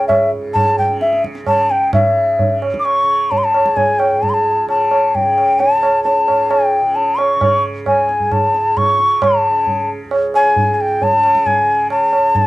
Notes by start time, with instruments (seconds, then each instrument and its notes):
Already playing: tanpura C#2 G#2 C#3
0.08 bansuri E5, tabla na, tabla ge
0.33 tanpura G#2
0.54 bansuri A5, tabla na, tabla ge
0.78 bansuri G5, tabla ge
0.88 tanpura C#3
1.01 bansuri E5, tabla te
1.13 tabla te
1.24 tabla ke
1.35 tabla te
1.43 tanpura C#3, tabla na, tabla ge
1.48 bansuri A5
1.69 bansuri G5, tabla te
1.93 tanpura G#2, bansuri E5, tabla na, tabla ge
2.39 tabla tin, tabla ge
2.48 tanpura C#3
2.62 tabla na
2.74 tabla ke
2.79 bansuri D6
2.85 bansuri C#6, tabla na
3.03 tanpura C#3
3.31 bansuri A5, tabla tin, tabla ge
3.38 bansuri C6
3.44 bansuri A5
3.54 tanpura C#2, tabla na
3.66 tabla ke
3.76 bansuri G#5, tabla tin, tabla ge
3.99 bansuri G5, tabla na
4.12 tanpura G#2
4.22 bansuri A5, tabla tin, tabla ge
4.30 bansuri C6
4.34 bansuri A5
4.66 tanpura C#3, bansuri A5, tabla na
4.91 tabla na
5.15 bansuri G5, tabla tin, tabla ge
5.20 tanpura C#3
5.38 tabla na
5.60 bansuri A5, tabla tin
5.75 tanpura C#2
5.83 tabla na
6.04 bansuri A5, tabla tin
6.28 tanpura G#2, tabla na
6.51 bansuri G5, tabla na
6.82 tanpura C#3
6.95 bansuri A5, tabla tin
7.18 bansuri C#6, tabla na
7.36 tanpura C#3
7.41 tabla na, tabla ge
7.86 bansuri G#5, tabla na, tabla ge
7.91 tanpura C#2
8.09 tabla te
8.20 tabla ge
8.31 bansuri A5, tabla na, tabla ge
8.44 tanpura G#2
8.54 tabla te
8.77 bansuri C#6, tabla na, tabla ge
8.98 tanpura C#3, tabla te
9.22 bansuri A5, tabla na, tabla ge
9.50 tanpura C#3
9.67 tabla tin, tabla ge
10.04 tanpura C#2
10.11 tabla na
10.34 bansuri G#5, tabla na
10.56 tanpura G#2, tabla tin, tabla ge
10.74 bansuri G#5
10.81 bansuri G5
11.02 bansuri A5, tabla tin, tabla ge
11.11 tanpura C#3
11.24 tabla na
11.35 tabla ke
11.46 bansuri G#5, tabla tin, tabla ge
11.63 tanpura C#3
11.90 bansuri A5, tabla na
12.13 tabla na
12.17 tanpura C#2
12.35 bansuri G#5, tabla tin, tabla ge